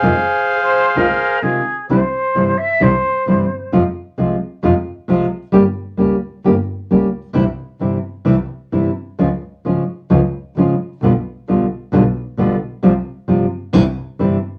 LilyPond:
<<
  \new Staff \with { instrumentName = "Bandoneon" } { \time 4/4 \key f \minor \tempo 4 = 132 <aes' c'' f''>2. r4 | \key c \phrygian r1 | r1 | r1 |
r1 | r1 | r1 | r1 | }
  \new Staff \with { instrumentName = "Flute" } { \time 4/4 \key f \minor r4 aes'16 c''8. bes'4 aes'4 | \key c \phrygian c''4. e''8 c''2 | r1 | r1 |
r1 | r1 | r1 | r1 | }
  \new Staff \with { instrumentName = "Nylon-string guitar" } { \clef bass \time 4/4 \key f \minor <c ees aes c' f'>8 r4. <c ees aes c' f'>8 r8 <c ees aes c' f'>8 r8 | \key c \phrygian <c e g c' e'>8 r8 <c e g c' e'>8 r8 <c e g c' e'>8 r8 <c e g c' e'>8 r8 | <c f aes c' f'>8 r8 <c f aes c' f'>8 r8 <c f aes c' f'>8 r8 <c f aes c' f'>8 r8 | <g bes des' g'>8 r8 <g bes des' g'>8 r8 <g bes des' g'>8 r8 <g bes des' g'>8 r8 |
<c e g c' e'>8 r8 <c e g c' e'>8 r8 <c e g c' e'>8 r8 <c e g c' e'>8 r8 | <des f aes des' f'>8 r8 <des f aes des' f'>8 r8 <des f aes des' f'>8 r8 <des f aes des' f'>8 r8 | <b, d g b f'>8 r8 <b, d g b f'>8 r8 <b, d g b f'>8 r8 <b, d g b f'>8 r8 | <c f g c' f'>8 r8 <c f g c' f'>8 r8 <c e g c' e'>8 r8 <c e g c' e'>8 r8 | }
  \new Staff \with { instrumentName = "Double bass" } { \clef bass \time 4/4 \key f \minor f,8 r4. c,8 r4. | \key c \phrygian c,8 r8 g,,8 r8 c,8 r8 g,,8 r8 | f,8 r8 c,8 r8 f,8 r8 c,8 r8 | g,,8 r8 des,8 r8 g,,8 r8 des,8 r8 |
c,8 r8 g,,8 r8 c,8 r8 g,,8 r8 | des,8 r8 aes,,8 r8 des,8 r8 aes,,8 r8 | b,,8 r8 b,,8 r8 b,,8 r8 b,,8 r8 | c,8 r8 g,,8 r8 c,8 r8 g,,8 r8 | }
>>